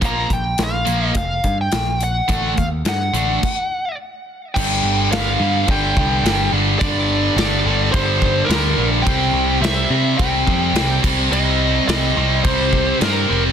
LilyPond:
<<
  \new Staff \with { instrumentName = "Lead electric guitar" } { \time 4/4 \key g \minor \tempo 4 = 107 bes''8 g''8 f''4 f''8. g''8. fis''8~ | fis''8 f''8 fis''2 r4 | g''4 f''4 g''4. r8 | d''4 d''4 c''4 bes'8. r16 |
g''4 e''4 g''4. r8 | ees''4 ees''4 c''4 bes'8. r16 | }
  \new Staff \with { instrumentName = "Distorted electric guitar" } { \clef bass \time 4/4 \key g \minor <bes, f bes>8 r4 <bes, f bes>8 r2 | <d a d'>8 r4 <d a d'>8 r2 | <g, d g>4 <g, d g>8 <g, d g>8 <g, d g>4 <g, d g>8 <g, d g>8 | <g, d g>4 <g, d g>8 <g, d g>8 <g, d g>4 <g, d g>8 <g, d g>8 |
<c g c'>4 <c g c'>8 <c g c'>8 <c g c'>4 <c g c'>8 <c g c'>8 | <c g c'>4 <c g c'>8 <c g c'>8 <c g c'>4 <c g c'>8 <c g c'>8 | }
  \new Staff \with { instrumentName = "Picked electric bass" } { \clef bass \time 4/4 \key g \minor bes,,8 bes,,8 bes,,8 bes,,8 r8 g,8 bes,,4 | a,,8 ees,8 g,8 a,,8 r2 | g,,8 g,,8 g,,8 g,8 g,,8 c,8 g,,8 g,,8 | g,,4 g,,8 g,,8 g,,4 d,8 bes,,8 |
c,8 c,8 c,8 c8 c,8 f,8 c,8 c,8 | c,4 c,8 c,8 c,4 g,8 f,,8 | }
  \new DrumStaff \with { instrumentName = "Drums" } \drummode { \time 4/4 <hh bd>8 <hh bd>8 <hh sn>8 hh8 <hh bd>8 <hh bd>8 <hh sn>8 hh8 | <hh bd>8 <hh bd>8 <hh sn>8 hh8 <cymc bd>4 r4 | <cymc bd>4 <cymc sn>4 <cymc bd>8 bd8 <cymc sn>4 | <cymc bd>4 <cymc sn>4 <cymc bd>8 bd8 <cymc sn>4 |
<cymc bd>4 <cymc sn>4 <cymc bd>8 bd8 <cymc sn>8 <cymc bd>8 | cymc4 <cymc sn>4 <cymc bd>8 bd8 <cymc sn>4 | }
>>